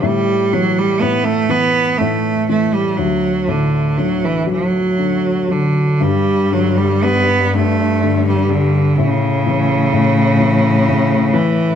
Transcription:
<<
  \new Staff \with { instrumentName = "Cello" } { \clef bass \time 6/8 \key a \mixolydian \tempo 4. = 41 g8 fis16 g16 b16 a16 b8 a8 a16 g16 | fis8 d8 fis16 e16 fis4 d8 | g8 fis16 g16 b8 a8. g16 d8 | cis2~ cis8 e8 | }
  \new Staff \with { instrumentName = "Upright piano" } { \clef bass \time 6/8 \key a \mixolydian a,8 e8 a,8 e8 a,8 e8 | d,8 a,8 d8 fis8 d8 fis8 | g,8 d8 g8 g,8 d8 g8 | a,8 e8 a,8 e8 a,8 e8 | }
  \new Staff \with { instrumentName = "Cello" } { \clef bass \time 6/8 \key a \mixolydian r2. | r2. | g,2. | a,2. | }
>>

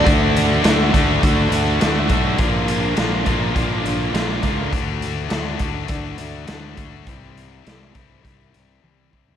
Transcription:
<<
  \new Staff \with { instrumentName = "Distorted electric guitar" } { \time 4/4 \key d \mixolydian \tempo 4 = 102 <d a d' fis'>4 <d a d' fis'>8 <d a d' fis'>8 <d a d' fis'>4 <d a d' fis'>8 <d a d' fis'>8 | <bes, d bes d' f'>4 <bes, d bes d' f'>8 <bes, d bes d' f'>8 <bes, d bes d' f'>4 <bes, d bes d' f'>8 <bes, d bes d' f'>8 | r1 | r1 | }
  \new Staff \with { instrumentName = "Distorted electric guitar" } { \time 4/4 \key d \mixolydian <d a d' fis'>4 <d a d' fis'>8 <d a d' fis'>8 <d a d' fis'>4 <d a d' fis'>8 <d a d' fis'>8 | <bes, d bes d' f'>4 <bes, d bes d' f'>8 <bes, d bes d' f'>8 <bes, d bes d' f'>4 <bes, d bes d' f'>8 <bes, d bes d' f'>8 | <d a d' fis'>4 <d a d' fis'>8 <d a d' fis'>8 <d a d' fis'>4 <d a d' fis'>8 <d a d' fis'>8 | <c e g c' e'>4 <c e g c' e'>8 <c e g c' e'>8 <c e g c' e'>4 <c e g c' e'>8 <c e g c' e'>8 | }
  \new Staff \with { instrumentName = "Fingered electric bass" } { \clef bass \time 4/4 \key d \mixolydian d,4 d,8 d,8 d,8 d,8 d,8 b,,8 | bes,,4 bes,,8 bes,,8 bes,,8 bes,,8 bes,,8 cis,8 | d,4 d,8 d,8 d,8 d,8 d,8 d,8 | c,4 c,8 c,8 c,8 c,8 c,8 c,8 | }
  \new DrumStaff \with { instrumentName = "Drums" } \drummode { \time 4/4 <hh bd>8 hh8 <hh sn>8 <hh bd>8 <hh bd>8 hh8 <hh sn>8 <hh bd>8 | <hh bd>8 hh8 <hh sn>8 <hh bd>8 <hh bd>8 hh8 <hh sn>8 <hh bd>8 | <hh bd>8 hh8 <hh sn>8 <hh bd>8 <hh bd>8 hh8 <hh sn>8 <hh bd>8 | <hh bd>8 hh8 <hh sn>8 <hh bd>8 <hh bd>8 hh8 tommh8 bd16 tomfh16 | }
>>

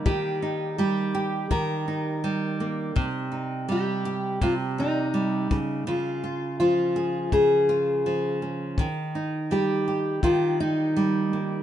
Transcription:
<<
  \new Staff \with { instrumentName = "Steel-string acoustic guitar" } { \time 4/4 \key ees \mixolydian \tempo 4 = 82 g'4 g'4 bes'4. r8 | r4 g'4 f'8 ees'4. | f'4 f'4 aes'4. r8 | r4 g'4 f'8 ees'4. | }
  \new Staff \with { instrumentName = "Nylon-string guitar" } { \clef bass \time 4/4 \key ees \mixolydian <ees g bes ees' g'>8 ees'8 g8 g'8 ees8 ees'8 g8 bes8 | c8 ees'8 g8 g'8 c8 ees'8 g8 des8 | des8 f'8 f8 aes'8 des8 f'8 f8 des'8 | ees8 ees'8 g8 g'8 ees8 ees'8 g8 bes8 | }
  \new DrumStaff \with { instrumentName = "Drums" } \drummode { \time 4/4 bd4 r4 bd4 r4 | bd4 r4 bd4 r8 bd8 | r4 r4 bd4 r4 | bd4 r4 bd4 r4 | }
>>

